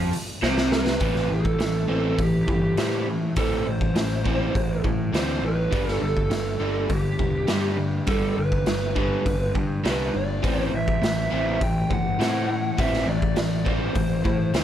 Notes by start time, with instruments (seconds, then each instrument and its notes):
Already playing: picked electric bass F2, overdriven electric guitar F3
0.13 open hi-hat
0.42 picked electric bass C2, overdriven electric guitar C3, lead electric guitar C5, snare
0.58 snare
0.72 lead electric guitar B4, snare
0.87 snare
1.00 picked electric bass A1, overdriven electric guitar A2 E3 C4, kick, open hi-hat
1.16 snare
1.28 picked electric bass A1, overdriven electric guitar A2 E3
1.35 lead electric guitar A4
1.45 kick
1.59 picked electric bass A1, overdriven electric guitar A2 E3, snare, open hi-hat
1.88 picked electric bass A1, overdriven electric guitar A2 E3 C4
2.18 picked electric bass A1, overdriven electric guitar A2 E3, lead electric guitar G4, kick, open hi-hat
2.48 picked electric bass G1, overdriven electric guitar A2 E3, kick
2.77 overdriven electric guitar A2 E3 C4, picked electric bass A2, snare, open hi-hat
3.07 overdriven electric guitar A2 E3
3.36 picked electric bass A1, overdriven electric guitar A2 E3 C4, lead electric guitar A4, kick, open hi-hat
3.66 picked electric bass A1, overdriven electric guitar A2 E3, lead electric guitar C5
3.81 kick
3.95 picked electric bass A1, overdriven electric guitar A2 E3, snare, open hi-hat
4.25 overdriven electric guitar A2 E3 C4, kick
4.54 picked electric bass A1, overdriven electric guitar A2 E3, kick, open hi-hat
4.84 overdriven electric guitar A2 E3, picked electric bass A2, kick
5.13 picked electric bass D2, overdriven electric guitar A2 E3 C4, lead electric guitar C5, snare, open hi-hat
5.41 picked electric bass A1, overdriven electric guitar A2 E3
5.46 lead electric guitar B4
5.72 picked electric bass G1, overdriven electric guitar G2 D3 G3, kick, open hi-hat
5.88 lead electric guitar A4, snare
6.01 picked electric bass G1, overdriven electric guitar G2 D3, lead electric guitar A4
6.17 kick
6.30 picked electric bass G1, overdriven electric guitar G2 D3, snare, open hi-hat
6.60 picked electric bass G1, overdriven electric guitar G2 D3 G3
6.90 picked electric bass G1, overdriven electric guitar G2 D3, lead electric guitar G4, kick, open hi-hat
7.19 picked electric bass E1, overdriven electric guitar G2 D3, kick
7.47 overdriven electric guitar G2 D3 G3, picked electric bass G2, snare, open hi-hat
7.77 overdriven electric guitar G2 D3
8.07 picked electric bass G1, overdriven electric guitar G2 D3 G3, lead electric guitar A4, kick, open hi-hat
8.37 picked electric bass G1, overdriven electric guitar G2 D3, lead electric guitar B4
8.52 kick
8.66 picked electric bass G1, overdriven electric guitar G2 D3, snare, open hi-hat
8.95 overdriven electric guitar G2 D3 G3, kick
9.26 picked electric bass G1, overdriven electric guitar G2 D3, kick, open hi-hat
9.55 overdriven electric guitar G2 D3, picked electric bass G2, kick
9.84 picked electric bass C2, overdriven electric guitar G2 D3 G3, snare, open hi-hat
9.89 lead electric guitar B4
10.14 picked electric bass G1, overdriven electric guitar G2 D3, lead electric guitar D5
10.42 picked electric bass A1, overdriven electric guitar A2 E3 C4, kick, open hi-hat
10.62 lead electric guitar C5
10.72 picked electric bass A1, overdriven electric guitar A2 E3
10.76 lead electric guitar E5
10.88 kick
11.02 picked electric bass A1, overdriven electric guitar A2 E3, snare, open hi-hat
11.31 picked electric bass A1, overdriven electric guitar A2 E3 C4
11.60 picked electric bass A1, overdriven electric guitar A2 E3, lead electric guitar G5, kick, open hi-hat
11.90 picked electric bass G1, overdriven electric guitar A2 E3, lead electric guitar F#5, kick
12.19 overdriven electric guitar A2 E3 C4, picked electric bass A2, snare, open hi-hat
12.49 overdriven electric guitar A2 E3
12.77 picked electric bass A1, overdriven electric guitar A2 E3 C4, lead electric guitar E5, kick, open hi-hat
12.94 snare
13.06 picked electric bass A1, overdriven electric guitar A2 E3, lead electric guitar D5
13.22 kick
13.36 picked electric bass A1, overdriven electric guitar A2 E3, lead electric guitar D5, snare, open hi-hat
13.65 overdriven electric guitar A2 E3 C4, lead electric guitar C5, kick
13.95 picked electric bass A1, overdriven electric guitar A2 E3, kick, open hi-hat
14.24 overdriven electric guitar A2 E3, picked electric bass A2, kick
14.54 picked electric bass D2, overdriven electric guitar A2 E3 C4, lead electric guitar C5, snare, open hi-hat